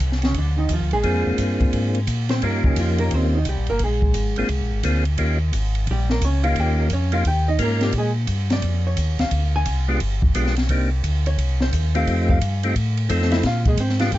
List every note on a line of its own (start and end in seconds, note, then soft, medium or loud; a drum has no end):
0.00 0.34 C2 medium
0.00 kick soft
0.00 hi-hat pedal medium
0.00 ride medium
0.12 snare soft
0.22 0.36 C#3 medium
0.22 0.36 C#4 medium
0.22 snare soft
0.22 ride medium
0.34 0.69 D2 medium
0.34 0.58 D4 medium
0.34 kick soft
0.34 ride medium
0.39 0.57 D3 medium
0.58 0.70 D#3 medium
0.58 0.70 D#4 medium
0.69 0.81 D#2 medium
0.69 0.93 F3 medium
0.69 kick soft
0.69 hi-hat pedal medium
0.69 ride medium
0.74 0.93 F4 medium
0.81 0.93 D2 medium
0.91 1.04 A#1 medium
0.91 1.36 G#3 medium
0.91 1.36 G#4 loud
0.91 ride soft
1.03 1.25 F2 medium
1.03 2.00 A#3 medium
1.03 2.00 C4 medium
1.03 2.01 D4 medium
1.03 2.01 F4 medium
1.03 2.01 G#4 medium
1.03 kick soft
1.03 ride medium
1.27 1.33 F2 soft
1.38 1.59 G2 loud
1.38 kick soft
1.38 hi-hat pedal medium
1.38 ride medium
1.60 1.67 G2 soft
1.60 kick medium
1.60 ride soft
1.73 2.07 G#2 medium
1.73 kick soft
1.73 ride medium
1.95 ride medium
2.07 2.41 A#2 medium
2.07 kick soft
2.07 hi-hat pedal medium
2.07 ride medium
2.29 2.43 C4 medium
2.29 2.43 C5 medium
2.29 snare medium
2.29 ride soft
2.42 2.63 G2 medium
2.42 3.39 A#3 medium
2.42 2.65 A#3 medium
2.42 3.39 C#4 medium
2.42 3.39 D#4 medium
2.42 3.39 F4 medium
2.42 3.39 G4 medium
2.42 2.65 A#4 medium
2.42 kick soft
2.42 ride medium
2.64 2.70 G2 soft
2.64 2.78 C#3 soft
2.64 2.77 C#4 medium
2.64 kick medium
2.76 3.10 F2 medium
2.76 3.00 F4 medium
2.76 kick soft
2.76 hi-hat pedal medium
2.76 ride medium
2.80 3.00 F3 medium
2.98 3.12 A#3 medium
2.98 3.12 A#4 loud
2.98 ride soft
3.11 3.45 D#2 medium
3.11 3.34 C5 loud
3.11 kick soft
3.11 ride medium
3.15 3.35 C4 medium
3.35 3.47 D#3 soft
3.35 3.47 D#4 medium
3.45 3.57 C2 medium
3.45 3.69 G3 medium
3.45 3.69 G4 medium
3.45 kick soft
3.45 hi-hat pedal medium
3.45 ride medium
3.58 3.69 A#1 medium
3.67 3.80 G1 medium
3.67 3.81 A#4 loud
3.67 ride soft
3.71 3.82 A#3 medium
3.79 4.14 A#1 medium
3.79 kick soft
3.79 ride medium
3.84 4.82 G#3 medium
3.84 4.82 G#4 medium
4.02 kick medium
4.14 4.36 G#1 medium
4.14 kick soft
4.14 hi-hat pedal medium
4.14 ride medium
4.36 4.44 G#1 soft
4.36 4.49 A#3 medium
4.36 4.49 C4 medium
4.36 4.49 D4 medium
4.36 4.49 F4 medium
4.36 4.49 G#4 medium
4.36 ride medium
4.49 4.61 C2 medium
4.49 kick soft
4.49 ride medium
4.61 4.73 A#1 medium
4.72 4.83 G#1 medium
4.83 5.18 D2 medium
4.83 5.04 A#3 medium
4.83 5.04 C4 medium
4.83 5.04 D4 medium
4.83 5.04 F4 medium
4.83 5.04 G#4 medium
4.83 kick soft
4.83 hi-hat pedal medium
4.83 ride medium
5.05 ride soft
5.18 5.52 D#2 medium
5.18 5.39 A#3 medium
5.18 5.39 C#4 medium
5.18 5.39 D#4 medium
5.18 5.39 F4 medium
5.18 5.39 G4 medium
5.18 kick soft
5.18 ride medium
5.52 5.86 G#1 loud
5.52 kick soft
5.52 hi-hat pedal medium
5.52 ride medium
5.75 ride soft
5.87 6.21 A#1 loud
5.87 6.11 G3 medium
5.87 kick soft
5.87 ride medium
5.91 6.11 G4 medium
6.10 6.23 A#3 medium
6.10 6.23 A#4 medium
6.10 snare soft
6.21 6.55 C#2 medium
6.21 6.45 C#4 medium
6.21 6.43 C#5 medium
6.21 kick soft
6.21 hi-hat pedal medium
6.21 ride medium
6.44 6.88 A#3 medium
6.44 6.89 C#4 medium
6.44 6.89 D#4 medium
6.44 6.89 F4 medium
6.44 6.57 F4 medium
6.44 6.89 G4 medium
6.44 6.56 F5 loud
6.44 ride medium
6.56 6.90 D#2 medium
6.56 6.80 G5 loud
6.56 kick soft
6.56 ride medium
6.60 6.79 G4 medium
6.79 6.91 A#3 soft
6.79 6.91 A#4 medium
6.90 7.24 F2 medium
6.90 7.14 C#5 medium
6.90 kick soft
6.90 hi-hat pedal medium
6.90 ride medium
6.94 7.14 C#4 medium
7.12 7.24 A#3 medium
7.12 7.24 C#4 medium
7.12 7.24 D#4 medium
7.12 7.24 F4 medium
7.12 7.26 F4 medium
7.12 7.25 G4 medium
7.12 7.26 F5 loud
7.12 ride medium
7.25 7.59 D#2 loud
7.25 7.48 G4 medium
7.25 7.48 G5 loud
7.25 kick soft
7.25 ride medium
7.48 7.60 D#4 medium
7.48 7.60 D#5 loud
7.59 7.93 G#2 medium
7.59 7.94 A#3 medium
7.59 7.94 C#4 medium
7.59 7.94 D#4 medium
7.59 7.94 F4 medium
7.59 7.94 A#4 medium
7.59 7.82 A#4 medium
7.59 kick soft
7.59 hi-hat pedal medium
7.59 ride medium
7.63 7.83 A#3 medium
7.81 7.95 G3 medium
7.81 7.95 G4 loud
7.81 snare soft
7.81 ride soft
7.93 8.27 A#2 medium
7.93 kick soft
7.93 ride medium
7.98 8.10 G#3 medium
7.98 8.10 G#4 medium
8.27 8.62 G2 loud
8.27 kick soft
8.27 hi-hat pedal medium
8.27 ride medium
8.50 8.84 D5 loud
8.50 snare medium
8.50 ride medium
8.62 8.96 F2 loud
8.62 kick soft
8.62 ride medium
8.87 9.18 C#5 medium
8.97 9.18 D#2 medium
8.97 kick soft
8.97 hi-hat pedal medium
8.97 ride medium
9.19 9.26 D#2 soft
9.19 9.52 F5 loud
9.19 snare soft
9.19 ride soft
9.31 9.65 D2 medium
9.31 kick soft
9.31 ride medium
9.56 9.99 G#5 loud
9.66 10.00 C2 medium
9.66 kick soft
9.66 hi-hat pedal medium
9.66 ride medium
9.88 10.00 G#3 medium
9.88 10.00 B3 medium
9.88 10.00 D4 medium
9.88 10.00 F4 medium
9.88 10.00 G4 medium
10.00 10.34 G1 medium
10.00 kick soft
10.00 ride medium
10.22 kick medium
10.35 10.69 B1 medium
10.35 10.55 G#3 medium
10.35 10.55 B3 medium
10.35 10.55 D4 medium
10.35 10.55 F4 medium
10.35 10.55 G4 medium
10.35 kick soft
10.35 hi-hat pedal medium
10.35 ride medium
10.46 snare soft
10.56 snare soft
10.56 ride medium
10.69 11.03 C2 medium
10.69 10.90 A#3 medium
10.69 10.90 C4 medium
10.69 10.90 D4 medium
10.69 10.90 D#4 medium
10.69 10.90 G4 medium
10.69 kick soft
10.69 ride medium
11.04 11.37 D2 loud
11.04 kick soft
11.04 hi-hat pedal medium
11.04 ride medium
11.26 11.58 C#5 loud
11.26 ride medium
11.38 11.72 C2 medium
11.38 kick soft
11.38 ride medium
11.61 11.93 C5 loud
11.61 snare soft
11.73 12.06 D#2 medium
11.73 kick soft
11.73 hi-hat pedal medium
11.73 ride medium
11.95 12.39 A3 medium
11.95 12.39 C4 medium
11.95 12.39 D#4 medium
11.95 12.39 F4 medium
11.95 12.39 G4 medium
11.95 12.27 F5 loud
11.95 ride medium
12.07 12.41 F2 medium
12.07 kick soft
12.07 ride medium
12.29 12.73 F5 loud
12.29 kick medium
12.41 12.75 G2 loud
12.41 kick soft
12.41 hi-hat pedal medium
12.41 ride medium
12.63 12.75 A3 medium
12.63 12.75 C4 medium
12.63 12.75 D#4 medium
12.63 12.75 F4 medium
12.63 12.75 G4 medium
12.63 ride medium
12.75 13.09 A2 loud
12.75 kick soft
12.75 ride medium
12.97 ride medium
13.09 13.43 F2 loud
13.09 13.44 A3 medium
13.09 13.44 C4 medium
13.09 13.44 D#4 medium
13.09 13.44 F4 medium
13.09 13.45 A4 medium
13.09 kick soft
13.09 hi-hat pedal medium
13.09 ride medium
13.22 snare soft
13.32 13.44 E4 medium
13.32 13.44 E5 loud
13.32 snare medium
13.32 ride medium
13.43 13.77 A#2 medium
13.43 13.67 F4 medium
13.43 13.66 F5 loud
13.43 kick soft
13.43 snare soft
13.43 ride medium
13.65 13.79 G#3 medium
13.65 13.79 G#4 medium
13.65 kick medium
13.65 ride medium
13.77 14.11 G#2 loud
13.77 14.01 C4 medium
13.77 14.00 C5 medium
13.77 kick soft
13.77 hi-hat pedal medium
13.77 ride medium
13.89 snare soft
13.99 14.12 G#3 medium
13.99 14.12 B3 medium
13.99 14.12 D4 medium
13.99 14.12 F4 medium
13.99 14.12 G4 medium
13.99 14.12 F5 medium
13.99 snare medium
13.99 ride medium
14.12 14.18 G2 medium
14.12 14.18 G4 medium
14.12 14.18 G5 loud
14.12 kick soft
14.12 ride medium